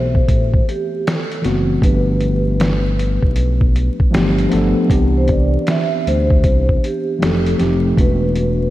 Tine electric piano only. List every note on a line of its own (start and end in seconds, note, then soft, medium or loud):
0.00 0.21 E3 medium
0.00 0.22 A3 medium
0.00 0.22 B3 medium
0.00 0.23 C4 medium
0.00 1.45 F#4 medium
0.00 0.23 G4 medium
0.00 1.85 A4 medium
1.42 1.80 E3 medium
1.42 1.80 A3 medium
1.42 1.81 B3 medium
1.42 1.81 C4 medium
1.42 1.81 F#4 medium
1.80 3.29 F3 medium
1.80 3.29 A3 medium
1.80 3.29 B3 medium
1.80 3.30 D4 medium
1.80 3.30 G4 medium
4.11 4.48 F3 loud
4.11 4.49 A3 medium
4.11 4.50 B3 medium
4.11 4.50 D4 medium
4.11 4.50 G4 loud
4.49 4.87 F3 medium
4.49 4.88 A3 medium
4.49 4.87 B3 medium
4.49 4.88 D4 medium
4.53 4.89 A4 loud
4.87 6.36 E3 medium
4.87 6.36 B3 medium
4.87 6.37 C4 medium
4.87 6.37 D4 medium
4.87 6.38 G4 medium
7.19 7.57 F3 medium
7.19 7.57 A3 medium
7.19 7.57 C4 medium
7.19 7.58 D#4 medium
7.19 7.58 G4 medium
7.58 7.95 F3 medium
7.58 7.95 A3 medium
7.58 7.96 C4 medium
7.58 7.96 D#4 medium
7.58 7.97 G4 medium
7.96 8.70 E3 medium
7.96 8.70 A3 medium
7.96 8.70 B3 medium
7.96 8.70 D4 medium
7.96 8.70 F#4 medium